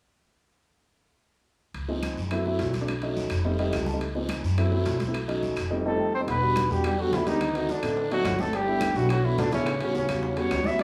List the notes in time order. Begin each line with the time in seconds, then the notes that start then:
1.74 C#2, high conga, high timbale, long guiro
1.88 F3 G#3 C4 D#4, high conga
2.02 high conga, high timbale, low timbale, short guiro, claves
2.17 F#2, short guiro
2.31 F#3 A3 C4 E4, high conga, high timbale, long guiro, claves
2.45 F#3 A3 C4 E4, high conga
2.59 B1, high conga, high timbale, low timbale, short guiro
2.73 high conga, high timbale, short guiro
2.81 F#3 A3 C4 D4
2.88 high conga, high timbale, long guiro, claves
3.02 F#3 A3 C#4 D#4, high conga, high timbale
3.16 high conga, low timbale, short guiro
3.30 F1, high conga, high timbale, short guiro, claves
3.44 G3 A3 C4 D#4, high conga, long guiro
3.59 G3 A3 C4 D#4 D#5, high conga, high timbale
3.73 C#2 F5, high conga, high timbale, low timbale, short guiro, claves
3.86 A5, high conga, short guiro
3.93 G3 A3 C4 D#4
4.01 high conga, high timbale, long guiro
4.15 F3 G#3 C4 D#4, high conga
4.29 high conga, high timbale, low timbale, short guiro, claves
4.43 F#2, short guiro
4.58 F#3 A3 C4 E4, high conga, high timbale, long guiro, claves
4.72 F#3 A3 C4 E4, high conga
4.85 B1, high conga, high timbale, low timbale, short guiro
5.00 high conga, high timbale, short guiro
5.07 F#3 A3 C4 E4
5.14 high conga, high timbale, long guiro, claves
5.28 F#3 A3 C#4 D#4, high conga, high timbale
5.43 high conga, low timbale, short guiro
5.56 F1, high conga, high timbale, short guiro, claves
5.70 F2 G3 A3 C4 D#4
5.86 F2 G3 A3 C4 D#4 A4 D#5
6.00 G5
6.15 C4 C5
6.20 F2 G3 A3 C4 D#4
6.27 E1 B3 B4, high bongo, high conga, high timbale, long guiro
6.42 G3 B3 D4 F#4, high conga
6.56 high bongo, high conga, high timbale, low timbale, short guiro, claves
6.69 E2 G3 B3 D4 F#4 G4, short guiro
6.84 G3 G4, high bongo, high conga, high timbale, long guiro, claves
6.98 F#3 G3 B3 D4 F#4 A4, high conga
7.12 D2 E3 E4, high bongo, low bongo, high conga, high timbale, low timbale, short guiro
7.26 D#3 G3 B3 D4 D#4 G4, high conga, high timbale, short guiro
7.41 high bongo, high conga, high timbale, long guiro, claves
7.54 D#3 A3 C4 D#4 F#4, high bongo, high conga, high timbale
7.69 D3 D4, high bongo, high conga, low timbale, short guiro
7.82 A1 A3 C4 D#4 A4, high bongo, high conga, high timbale, short guiro, claves
7.97 high bongo, high conga, long guiro
8.10 F#3 A3 C4 D#4 F#4, high bongo, high conga, high timbale
8.25 G1, high bongo, low bongo, high conga, high timbale, low timbale, short guiro, claves
8.39 A3 C4 D#4 A4, high conga, short guiro
8.53 G3 G4, high bongo, high conga, high timbale, long guiro
8.67 A3 B3 D4 E4, high conga
8.81 high bongo, high conga, high timbale, low timbale, short guiro, claves
8.95 B1 F#3 A3 B3 D4 E4 F#4, short guiro
9.09 F#3 F#4, high bongo, high conga, high timbale, long guiro, claves
9.24 E3 A3 B3 D4 E4 F#4, high conga
9.38 A1 D3 D4, high bongo, low bongo, high conga, high timbale, low timbale, short guiro
9.51 C#3 A3 B3 C#4 D4 E4, high conga, high timbale, short guiro
9.66 high bongo, high conga, high timbale, long guiro, claves
9.81 C#3 G3 B3 C#4 F#4, high bongo, high conga, high timbale
9.94 C#3 C#4, high bongo, high conga, low timbale, short guiro
10.09 E2 G3 B3 C#4 F#4, high conga, high timbale, short guiro, claves
10.23 high bongo, high conga, long guiro
10.37 G3 B3 C#4 F#4 C#5, high bongo, high conga, high timbale
10.51 D2, high bongo, low bongo, high conga, high timbale, low timbale, short guiro, claves
10.64 G3 B3 C#4 E4 F#4 E5, high conga, short guiro
10.79 D4, high bongo, high conga, high timbale, long guiro